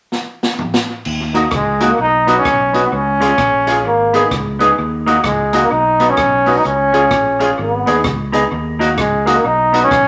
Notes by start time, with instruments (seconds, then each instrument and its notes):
0.12 snare
0.43 snare
0.59 mid tom
0.74 snare
1.05 fingered electric bass D#2, crash
1.33 upright piano A#3 D#4 F#4, clean electric guitar A#3 D#4 F#4, closed hi-hat
1.51 fingered electric bass C#2, trombone G#3, kick, cross-stick
1.80 upright piano A#3 D#4 F#4, clean electric guitar A#3 D#4 F#4, closed hi-hat
1.91 trombone A#3
1.99 fingered electric bass B1, trombone D#4
2.26 upright piano B3 D#4 F#4, clean electric guitar B3 D#4 F#4, closed hi-hat
2.38 trombone C#4
2.45 fingered electric bass B1, upright piano D#4 F#4, kick, cross-stick
2.73 clean electric guitar B3 D#4 F#4, upright piano B3 D#4 F#4, closed hi-hat
2.84 trombone B3
2.92 fingered electric bass C#2, trombone C#4
3.20 upright piano C#4 F4 G#4, clean electric guitar C#4 F4 G#4, closed hi-hat
3.38 fingered electric bass A#1, kick, cross-stick
3.67 upright piano C#4 F4 G#4, clean electric guitar C#4 F4 G#4, closed hi-hat
3.85 fingered electric bass G#1, trombone A#3, upright piano D#4 G#4
4.13 clean electric guitar B3 D#4 G#4, upright piano B3 D#4 G#4, closed hi-hat
4.31 fingered electric bass C#2, upright piano D#4 G#4, kick, cross-stick
4.59 clean electric guitar B3 D#4 G#4, upright piano B3 D#4 G#4, closed hi-hat
4.79 fingered electric bass D#2
5.06 upright piano A#3 D#4 F#4, clean electric guitar A#3 D#4 F#4, closed hi-hat
5.24 fingered electric bass C#2, trombone G#3, kick, cross-stick
5.53 upright piano A#3 D#4 F#4, clean electric guitar A#3 D#4 F#4, closed hi-hat
5.63 trombone A#3
5.71 fingered electric bass B1, trombone D#4, upright piano D#4 F#4
6.00 upright piano B3 D#4 F#4, clean electric guitar B3 D#4 F#4, closed hi-hat
6.10 trombone C#4
6.17 fingered electric bass B1, upright piano D#4 F#4, kick, cross-stick
6.46 clean electric guitar B3 D#4 F#4, upright piano B3 D#4 F#4, open hi-hat
6.57 trombone D#4
6.64 fingered electric bass C#2, trombone C#4, hi-hat pedal
6.93 clean electric guitar C#4 F4 G#4, upright piano C#4 F4 G#4, closed hi-hat
7.11 fingered electric bass A#1, kick, cross-stick
7.39 clean electric guitar C#4 F4 G#4, upright piano C#4 F4 G#4, closed hi-hat
7.58 fingered electric bass G#1, trombone B3, upright piano D#4 G#4
7.86 fingered electric bass D#2, clean electric guitar B3 D#4 G#4, upright piano B3 D#4 G#4, closed hi-hat
8.04 fingered electric bass C#2, upright piano D#4 G#4, kick, cross-stick
8.32 upright piano B3 D#4 G#4, clean electric guitar B3 D#4 G#4, closed hi-hat
8.52 fingered electric bass D#2
8.79 upright piano A#3 D#4 F#4, clean electric guitar A#3 D#4 F#4, closed hi-hat
8.98 fingered electric bass C#2, trombone G#3, kick, cross-stick
9.25 upright piano A#3 D#4 F#4, clean electric guitar A#3 D#4 F#4, closed hi-hat
9.36 trombone A#3
9.45 fingered electric bass B1, trombone D#4
9.73 upright piano B3 D#4 F#4, clean electric guitar B3 D#4 F#4, closed hi-hat
9.83 trombone C#4
9.90 fingered electric bass B1, upright piano D#4 F#4, kick, cross-stick